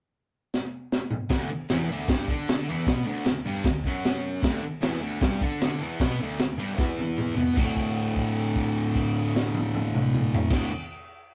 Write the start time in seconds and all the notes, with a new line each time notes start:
0.54 snare
0.92 snare
1.11 mid tom
1.29 D2 D3, kick, snare, crash
1.51 muted distorted electric guitar stroke
1.69 E2 E3, snare, crash
1.90 D2 D3
2.08 G2 G3, kick, snare, crash
2.28 D3 D4, kick
2.48 snare, crash
2.67 E2 E3
2.87 B2 B3, kick, snare, crash
3.05 D2 D3
3.25 D2, snare, crash
3.45 G2 G3
3.64 D2, kick, snare, crash
3.84 F#2 F#3, kick
4.04 snare, crash
4.43 D2 D3, kick, snare, crash
4.63 muted distorted electric guitar stroke
4.81 E2 E3, snare, crash
5.01 D2 D3
5.21 G2 G3, kick, snare, crash
5.41 D3 D4, kick
5.60 snare, crash
5.79 E2 E3
6.00 B2 B3, kick, snare, crash
6.21 D2 D3
6.38 D2, snare, crash
6.58 G2 G3
6.77 E2 E3, kick, snare
6.99 high tom
7.18 mid tom
7.35 B2 B3, floor tom
7.54 D2 A2, kick, crash
7.59 D3
7.76 kick, crash
7.96 crash
8.16 kick, crash
8.36 crash
8.56 kick, crash
8.75 crash
8.95 kick, crash
9.15 crash
9.36 snare
9.55 high tom
9.74 high tom
9.94 mid tom
10.14 mid tom
10.34 floor tom
10.50 D2 A2, kick, snare, crash
10.55 D3